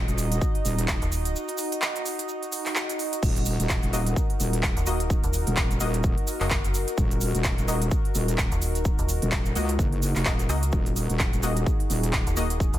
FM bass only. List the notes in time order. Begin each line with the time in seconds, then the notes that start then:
1.02 D#1
4.77 D#1
5.24 D#1
6.41 F#1
8.52 D#1
8.99 D#1
10.49 C#2
12.27 D#1
12.74 D#1